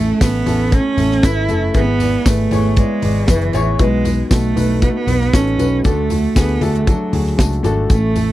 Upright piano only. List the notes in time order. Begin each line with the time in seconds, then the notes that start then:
Already playing: A2 A3 C#4 E4 A4
0.21 A3 C#4 E4 A4
0.46 A3 C#4 E4 A4
0.71 A3 C#4 E4 A4
0.97 A3 C#4 E4 A4
1.23 A3 C#4 E4 B4
1.48 A3 C#4 E4 A4
1.74 G#2 B3 E4 G#4 B4
2.00 B3 E4 G#4 D5
2.25 B3 E4 G#4 B4
2.51 B3 E4 G#4 C#5
2.77 B3 E4 G#4 D5
3.03 B3 E4 G#4 D5
3.28 B3 E4 G#4 B4
3.53 B3 E4 G#4 C#5
3.79 B2 B3 D#4 F#4 B4
4.05 B3 D#4 F#4 B4
4.30 B3 D#4 F#4 A4
4.55 B3 D#4 F#4 B4
4.81 B3 D#4 F#4 B4
5.07 B3 D#4 F#4 B4
5.33 B3 D#4 F#4 A4
5.58 B3 D#4 F#4 B4
5.84 D3 A3 D4 F#4 A4
6.10 A3 D4 F#4 A4
6.35 A3 D4 F#4 G#4
6.61 A3 D4 F#4 A4
6.86 A3 D4 F#4 A4
7.12 A3 D4 F#4 G#4
7.37 A3 D4 F#4 A4
7.63 A3 D4 F#4 A4
7.90 A2 A3 C#4 E4 A4
8.15 A3 C#4 E4 A4